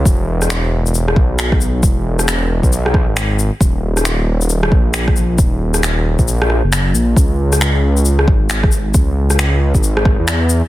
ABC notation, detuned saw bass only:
X:1
M:4/4
L:1/16
Q:"Swing 16ths" 1/4=135
K:C#dor
V:1 name="Detuned saw bass" clef=bass
E,,,8- E,,,2 B,,,6 | E,,,6- E,,, B,,,4 G,,,4 z | D,,,8- D,,,2 A,,,6 | D,,,6- D,,, A,,,4 F,,,3 A,,,2 |
C,,8- C,,2 G,,,6 | C,,6- C,, G,,,4 E,,4 z |]